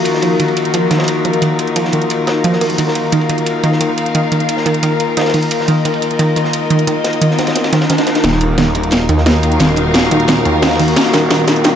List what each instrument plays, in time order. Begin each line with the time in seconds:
Already playing: synth drone D#3 A#3 F4 F#4, string section D#4 A#4 F5
0.05 closed hi-hat, ride
0.14 snare
0.22 synth arpeggio sound F3, closed hi-hat, ride
0.40 synth arpeggio sound D#3, closed hi-hat, ride
0.48 ride
0.57 closed hi-hat, ride
0.65 closed hi-hat
0.74 synth arpeggio sound F3, closed hi-hat, ride
0.91 synth arpeggio sound D#3, snare, closed hi-hat, ride
0.99 snare, ride
1.03 snare, ride
1.08 closed hi-hat, ride
1.25 synth arpeggio sound F3, closed hi-hat, ride
1.33 closed hi-hat
1.42 synth arpeggio sound D#3, closed hi-hat, ride
1.59 closed hi-hat, ride
1.67 closed hi-hat
1.76 synth arpeggio sound F3, closed hi-hat, ride
1.84 snare
1.92 synth arpeggio sound D#3, closed hi-hat, ride
2.02 closed hi-hat
2.10 closed hi-hat, ride
2.27 synth arpeggio sound D#4, snare, closed hi-hat, ride
2.44 synth arpeggio sound F3, closed hi-hat, ride
2.53 snare
2.61 synth arpeggio sound A#3, closed hi-hat, open hi-hat
2.70 closed hi-hat
2.78 synth arpeggio sound D#3, synth drone A#4, closed hi-hat, ride
2.88 snare
2.95 closed hi-hat, ride
3.02 string section F5
3.12 synth arpeggio sound D#3, closed hi-hat, ride
3.21 ride
3.29 synth arpeggio sound D#3, closed hi-hat, ride
3.38 closed hi-hat
3.46 closed hi-hat, ride
3.63 synth arpeggio sound D#3, closed hi-hat, ride
3.72 snare
3.81 synth arpeggio sound D#3, closed hi-hat, ride
3.98 closed hi-hat, ride
4.06 closed hi-hat
4.15 synth arpeggio sound D#3, closed hi-hat, ride
4.32 synth arpeggio sound D#3, closed hi-hat, ride
4.40 closed hi-hat
4.49 closed hi-hat, ride
4.57 snare
4.66 synth arpeggio sound D#3, closed hi-hat, ride
4.74 closed hi-hat
4.83 synth arpeggio sound D#3, closed hi-hat, ride
5.00 closed hi-hat, ride
5.17 synth arpeggio sound D#3, snare, closed hi-hat, ride
5.21 snare, ride
5.25 snare, ride
5.29 snare, ride
5.33 synth arpeggio sound D#3, closed hi-hat, open hi-hat
5.43 closed hi-hat
5.51 closed hi-hat, ride, riser
5.60 snare
5.68 synth arpeggio sound D#3, closed hi-hat, ride
5.74 string section D#5
5.85 synth arpeggio sound D#3, closed hi-hat, ride
5.94 ride
6.02 closed hi-hat, ride
6.11 closed hi-hat
6.19 synth arpeggio sound D#3, closed hi-hat, ride
6.36 synth arpeggio sound D#3, closed hi-hat, ride
6.44 snare
6.53 closed hi-hat, ride
6.70 synth arpeggio sound D#3, closed hi-hat, ride
6.79 closed hi-hat
6.87 synth arpeggio sound D#3, closed hi-hat, ride
7.04 snare, closed hi-hat, ride
7.13 closed hi-hat
7.22 synth arpeggio sound D#3, closed hi-hat, ride
7.31 snare
7.39 synth arpeggio sound D#3, snare, closed hi-hat, ride
7.47 snare, closed hi-hat, ride
7.55 snare, closed hi-hat, ride
7.64 snare, ride
7.73 synth arpeggio sound D#3, snare, closed hi-hat, ride
7.81 snare, ride
7.90 synth arpeggio sound D#3, snare, closed hi-hat, ride
7.98 snare, closed hi-hat, ride
8.07 snare, closed hi-hat, ride
8.15 snare, closed hi-hat, ride
8.24 detuned saw bass D#1, synth arpeggio sound D#3, synth drone D#3 A#3 F4 F#4, string section D#4, snare, closed hi-hat, ride, riser
8.32 snare
8.41 closed hi-hat, ride
8.58 synth arpeggio sound D#3, snare, closed hi-hat, ride
8.65 string section A#4, ride
8.75 detuned saw bass D#1, synth arpeggio sound D#3, closed hi-hat, ride
8.83 closed hi-hat
8.91 snare, closed hi-hat, ride
9.09 detuned saw bass D#2, synth arpeggio sound D#3, closed hi-hat, ride
9.18 snare
9.26 synth arpeggio sound D#3, string section F5, snare, closed hi-hat, ride
9.43 closed hi-hat, ride
9.52 closed hi-hat
9.59 detuned saw bass D#1, synth arpeggio sound D#3, snare, closed hi-hat, ride
9.76 synth arpeggio sound D#3, closed hi-hat, ride
9.94 snare, closed hi-hat, ride
10.03 snare
10.11 detuned saw bass D#1, synth arpeggio sound D#3, closed hi-hat, ride
10.20 closed hi-hat
10.28 synth arpeggio sound D#3, snare, closed hi-hat, ride
10.45 detuned saw bass D#2, closed hi-hat, ride
10.62 synth arpeggio sound D#3, snare, closed hi-hat, ride
10.66 snare, ride
10.71 snare, ride
10.75 snare, ride
10.79 synth arpeggio sound D#3, closed hi-hat, open hi-hat
10.88 closed hi-hat
10.96 detuned saw bass D#1, snare, closed hi-hat, ride
11.05 snare
11.14 synth arpeggio sound D#3, snare, closed hi-hat, ride, shaker
11.31 synth arpeggio sound D#3, snare, closed hi-hat, ride
11.40 ride
11.48 detuned saw bass D#1, snare, closed hi-hat, ride, shaker
11.56 closed hi-hat, shaker
11.64 synth arpeggio sound D#3, snare, closed hi-hat, ride